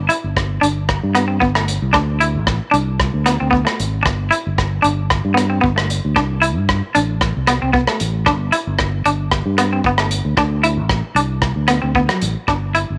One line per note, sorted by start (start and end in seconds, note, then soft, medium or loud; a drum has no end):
0.09 0.27 E4 medium
0.09 closed hi-hat medium
0.24 0.59 G1 medium
0.36 kick medium
0.36 cross-stick medium
0.61 0.99 G1 medium
0.61 0.79 D4 medium
0.61 closed hi-hat soft
0.89 kick medium
0.89 cross-stick medium
1.03 1.38 G2 medium
1.15 1.24 B3 medium
1.15 cross-stick medium
1.15 closed hi-hat soft
1.28 1.37 C4 medium
1.40 1.78 G1 medium
1.40 1.50 B3 medium
1.40 kick medium
1.55 1.73 A3 medium
1.55 cross-stick medium
1.68 closed hi-hat medium
1.82 1.93 C2 medium
1.93 2.37 D2 loud
1.93 2.11 D4 medium
1.93 kick medium
1.93 cross-stick medium
2.20 2.38 E4 medium
2.20 closed hi-hat medium
2.35 2.58 A1 medium
2.47 kick medium
2.47 cross-stick medium
2.71 3.09 C2 medium
2.71 2.90 D4 medium
2.71 closed hi-hat soft
3.00 kick medium
3.00 cross-stick medium
3.14 3.37 D2 medium
3.26 3.35 B3 medium
3.26 cross-stick medium
3.26 closed hi-hat soft
3.40 3.64 D2 medium
3.40 3.49 C4 medium
3.51 3.61 B3 medium
3.51 kick medium
3.65 3.83 A3 medium
3.65 cross-stick medium
3.80 4.06 G#1 medium
3.80 closed hi-hat medium
4.03 4.29 G1 medium
4.03 muted clean electric guitar stroke medium
4.03 kick medium
4.03 cross-stick medium
4.31 4.49 E4 medium
4.31 closed hi-hat soft
4.47 4.81 G1 medium
4.58 kick medium
4.58 cross-stick medium
4.82 5.20 G1 medium
4.82 5.01 D4 medium
4.82 closed hi-hat soft
5.10 kick medium
5.10 cross-stick medium
5.25 5.59 G2 medium
5.34 5.44 B3 medium
5.34 cross-stick medium
5.34 closed hi-hat soft
5.50 5.58 C4 medium
5.61 5.99 G1 medium
5.61 5.71 B3 medium
5.61 kick medium
5.76 5.94 A3 medium
5.76 cross-stick medium
5.90 closed hi-hat medium
6.05 6.15 D2 medium
6.16 6.58 C2 loud
6.16 6.33 D4 medium
6.16 kick medium
6.16 cross-stick medium
6.42 6.59 E4 medium
6.42 closed hi-hat soft
6.58 6.80 G2 medium
6.69 kick medium
6.69 cross-stick medium
6.95 7.31 A1 medium
6.95 7.12 D4 medium
6.95 closed hi-hat medium
7.21 kick medium
7.21 cross-stick medium
7.37 7.59 C2 medium
7.47 7.57 B3 medium
7.47 cross-stick medium
7.47 closed hi-hat medium
7.62 7.86 C2 medium
7.62 7.70 C4 medium
7.73 7.83 B3 medium
7.73 kick medium
7.87 8.06 A3 medium
7.87 cross-stick medium
8.00 8.28 A1 medium
8.00 closed hi-hat medium
8.26 8.50 G1 loud
8.26 8.44 D4 medium
8.26 kick medium
8.26 cross-stick medium
8.52 8.70 E4 medium
8.52 closed hi-hat soft
8.67 9.02 G1 medium
8.79 kick medium
8.79 cross-stick medium
9.05 9.41 G1 medium
9.05 9.23 D4 medium
9.05 closed hi-hat soft
9.31 kick medium
9.31 cross-stick medium
9.46 9.80 G2 medium
9.58 9.67 B3 medium
9.58 cross-stick medium
9.58 closed hi-hat medium
9.73 9.81 C4 medium
9.84 10.20 G1 loud
9.84 9.95 B3 medium
9.84 kick medium
9.98 10.17 A3 medium
9.98 cross-stick medium
10.11 closed hi-hat medium
10.25 10.36 D2 medium
10.37 10.79 D2 loud
10.37 10.55 D4 medium
10.37 kick medium
10.37 cross-stick medium
10.63 10.81 E4 medium
10.63 closed hi-hat soft
10.77 11.01 A1 medium
10.89 kick medium
10.89 cross-stick medium
11.15 11.51 C2 medium
11.15 11.34 D4 medium
11.15 closed hi-hat medium
11.42 kick medium
11.42 cross-stick medium
11.56 11.80 D2 medium
11.68 11.78 B3 medium
11.68 cross-stick medium
11.68 closed hi-hat medium
11.82 12.07 D2 medium
11.82 11.91 C4 medium
11.95 12.05 B3 medium
11.95 kick medium
12.09 12.27 F#3 medium
12.09 cross-stick medium
12.22 12.35 A1 medium
12.22 closed hi-hat medium
12.48 12.84 G1 medium
12.48 12.66 D4 medium
12.48 kick medium
12.48 cross-stick medium
12.75 12.92 E4 medium
12.75 closed hi-hat soft
12.90 12.98 G1 medium